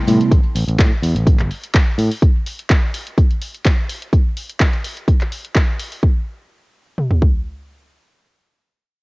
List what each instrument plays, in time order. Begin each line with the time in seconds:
Already playing: violin section A4 G5 C6
0.07 fingered electric bass A2, tine electric piano C3 G3 A3 B3 E4, open hi-hat, maracas
0.20 closed hi-hat, maracas
0.31 fingered electric bass A1, kick, closed hi-hat, maracas
0.43 muted fingered electric bass stroke, maracas
0.55 fingered electric bass A1, open hi-hat, maracas
0.68 fingered electric bass A1, closed hi-hat, maracas
0.79 fingered electric bass A2, kick, clap, closed hi-hat
1.03 fingered electric bass E2, open hi-hat, maracas
1.15 fingered electric bass A1, closed hi-hat, maracas
1.27 kick, closed hi-hat, maracas
1.39 fingered electric bass G1, clap, closed hi-hat, maracas
1.51 open hi-hat, maracas
1.64 closed hi-hat, maracas
1.74 kick, clap, closed hi-hat
1.98 fingered electric bass A2, open hi-hat, maracas
2.11 open hi-hat, maracas
2.22 kick, closed hi-hat, maracas
2.36 maracas
2.46 open hi-hat, maracas
2.59 closed hi-hat, maracas
2.70 kick, clap, closed hi-hat
2.94 open hi-hat, maracas
3.06 closed hi-hat, maracas
3.17 kick, closed hi-hat, maracas
3.30 closed hi-hat, maracas
3.41 open hi-hat, maracas
3.54 closed hi-hat, maracas
3.65 kick, clap, closed hi-hat
3.89 open hi-hat, maracas
4.02 closed hi-hat, maracas
4.13 kick, closed hi-hat
4.37 open hi-hat
4.50 closed hi-hat
4.60 kick, clap, closed hi-hat
4.73 closed hi-hat
4.85 open hi-hat
4.97 closed hi-hat
5.08 kick, closed hi-hat
5.21 clap, closed hi-hat
5.32 open hi-hat
5.45 closed hi-hat
5.55 kick, clap, closed hi-hat
5.80 open hi-hat
5.92 open hi-hat
6.03 kick
6.98 mid tom
7.11 floor tom
7.22 kick